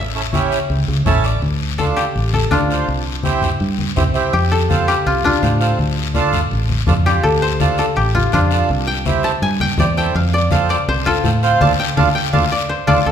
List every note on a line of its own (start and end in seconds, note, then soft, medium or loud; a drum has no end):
0.00 0.55 A1 medium
0.00 0.49 D5 medium
0.00 1.47 E5 medium
0.15 0.22 C#4 medium
0.15 0.22 E4 medium
0.15 0.22 A4 medium
0.33 0.59 C#4 medium
0.33 0.59 E4 medium
0.33 0.59 G4 medium
0.33 high conga medium
0.33 short guiro medium
0.52 short guiro medium
0.70 0.84 C#2 loud
0.70 long guiro medium
0.88 1.03 C#2 medium
1.06 1.35 A1 medium
1.06 1.25 C#4 medium
1.06 1.26 E4 medium
1.06 1.25 A4 medium
1.06 1.23 A5 medium
1.06 high conga medium
1.06 low conga medium
1.06 short guiro medium
1.24 1.42 D5 medium
1.24 short guiro medium
1.42 2.00 D2 loud
1.42 long guiro medium
1.78 2.05 D4 medium
1.78 2.05 F4 medium
1.78 2.33 A4 medium
1.78 2.05 A4 medium
1.78 high conga medium
1.78 short guiro medium
1.96 4.00 G4 medium
1.96 short guiro medium
2.15 2.44 A1 medium
2.15 long guiro medium
2.33 4.24 A4 medium
2.33 high conga medium
2.51 2.81 D2 medium
2.51 4.93 D4 medium
2.51 2.58 D4 medium
2.51 4.70 F4 medium
2.51 2.58 F4 medium
2.51 2.58 A4 medium
2.51 high conga medium
2.51 short guiro medium
2.70 2.88 D4 medium
2.70 2.88 F4 medium
2.70 2.89 C5 medium
2.70 short guiro medium
2.88 3.46 C2 loud
2.88 long guiro medium
3.23 3.50 C4 medium
3.23 3.50 E4 medium
3.23 3.50 G4 medium
3.23 high conga medium
3.23 short guiro medium
3.42 low conga medium
3.42 short guiro medium
3.60 3.90 G2 medium
3.60 long guiro medium
3.79 high conga medium
3.96 4.26 C2 medium
3.96 4.03 C4 medium
3.96 4.03 E4 medium
3.96 4.03 G4 loud
3.96 high conga medium
3.96 low conga medium
3.96 short guiro medium
4.14 4.33 C4 medium
4.14 4.33 E4 medium
4.14 4.33 G4 medium
4.14 short guiro medium
4.33 4.91 F2 loud
4.33 4.88 G4 medium
4.33 long guiro medium
4.52 6.42 A4 loud
4.70 4.95 C4 medium
4.70 4.95 F4 medium
4.70 4.95 A4 medium
4.70 high conga medium
4.70 short guiro medium
4.88 6.92 G4 medium
4.88 short guiro medium
5.06 5.35 C2 medium
5.06 5.25 F4 medium
5.06 long guiro medium
5.24 7.67 D4 medium
5.24 7.44 F4 loud
5.24 high conga medium
5.42 5.72 A2 medium
5.42 5.48 C4 medium
5.42 5.49 F4 medium
5.42 5.49 C5 medium
5.42 high conga medium
5.42 short guiro medium
5.60 5.79 C4 medium
5.60 5.79 F4 medium
5.60 5.79 A4 medium
5.60 short guiro medium
5.79 6.37 D2 medium
5.79 long guiro medium
6.15 6.40 D4 medium
6.15 6.41 F4 medium
6.15 6.41 A4 loud
6.15 high conga medium
6.15 short guiro medium
6.33 low conga medium
6.33 short guiro medium
6.51 6.81 A1 medium
6.51 long guiro medium
6.69 high conga medium
6.87 7.17 F2 medium
6.87 6.94 D4 medium
6.87 6.94 F4 medium
6.87 6.94 A4 medium
6.87 high conga medium
6.87 low conga medium
6.87 short guiro medium
7.05 7.25 D4 medium
7.05 7.25 F4 medium
7.05 7.96 G4 loud
7.05 7.25 G4 medium
7.05 short guiro medium
7.23 7.82 D2 loud
7.23 7.78 A4 loud
7.23 long guiro medium
7.42 9.14 C5 loud
7.60 7.86 D4 medium
7.60 7.86 F4 medium
7.60 7.86 A4 medium
7.60 high conga medium
7.60 short guiro medium
7.78 9.49 A4 medium
7.78 short guiro medium
7.96 8.26 A1 medium
7.96 9.49 G4 medium
7.96 long guiro medium
8.15 8.33 F4 medium
8.15 high conga medium
8.32 8.62 F2 medium
8.32 10.76 D4 medium
8.32 8.40 D4 medium
8.32 8.40 F4 medium
8.32 10.52 F4 medium
8.32 8.40 C5 medium
8.32 high conga medium
8.32 short guiro medium
8.51 8.70 D4 medium
8.51 8.70 F4 medium
8.51 8.70 A4 medium
8.51 short guiro medium
8.69 9.28 C2 loud
8.69 long guiro medium
8.87 9.49 G5 loud
9.05 9.32 C4 medium
9.05 9.32 E4 medium
9.05 9.32 G4 medium
9.05 high conga medium
9.05 short guiro medium
9.23 9.49 A5 medium
9.23 short guiro medium
9.42 9.71 G2 medium
9.42 9.67 G#5 loud
9.42 long guiro medium
9.60 9.97 G5 loud
9.60 high conga medium
9.78 10.08 E2 medium
9.78 9.85 C4 medium
9.78 9.85 E4 medium
9.78 9.86 G4 medium
9.78 10.33 D5 medium
9.78 high conga medium
9.78 low conga medium
9.78 short guiro medium
9.96 10.15 C4 medium
9.96 10.15 E4 medium
9.96 10.15 A4 medium
9.96 11.32 G5 medium
9.96 short guiro medium
10.15 10.73 F2 loud
10.15 10.52 F5 medium
10.15 long guiro medium
10.34 10.70 D5 medium
10.51 10.77 C4 medium
10.51 10.77 F4 medium
10.51 10.77 A4 medium
10.51 11.96 F5 medium
10.51 high conga loud
10.51 short guiro medium
10.69 12.30 D5 medium
10.69 short guiro medium
10.88 11.17 C2 loud
10.88 12.60 C5 loud
10.88 long guiro medium
11.06 12.87 F4 loud
11.06 12.97 A4 loud
11.06 high conga medium
11.24 11.53 A2 loud
11.24 11.31 C4 medium
11.24 11.31 F4 medium
11.24 11.31 A4 medium
11.24 high conga medium
11.24 short guiro medium
11.43 11.61 C4 medium
11.43 11.59 F4 medium
11.43 11.61 C5 loud
11.43 short guiro medium
11.61 11.74 D2 loud
11.61 11.73 D4 loud
11.61 11.72 F4 loud
11.61 11.72 A4 medium
11.61 12.87 A5 loud
11.61 high conga loud
11.61 long guiro loud
11.80 12.15 G5 medium
11.97 12.11 D2 loud
11.97 12.09 D4 loud
11.97 12.09 F4 loud
11.97 12.09 A4 loud
11.97 12.33 F5 medium
11.97 high conga loud
11.97 long guiro loud
12.15 13.12 G5 medium
12.33 12.47 D2 loud
12.33 12.45 D4 medium
12.33 12.45 F4 loud
12.33 12.45 A4 medium
12.33 13.12 F5 medium
12.33 high conga loud
12.52 12.87 D5 medium
12.69 13.12 C5 medium
12.87 13.02 D2 loud
12.87 12.99 D4 loud
12.87 13.12 F4 medium
12.87 12.99 F4 loud
12.87 13.00 A4 loud
12.87 13.12 D5 loud
12.87 high conga loud
12.87 long guiro loud
13.06 13.12 D2 medium
13.06 13.12 A4 medium
13.06 high conga soft
13.06 long guiro medium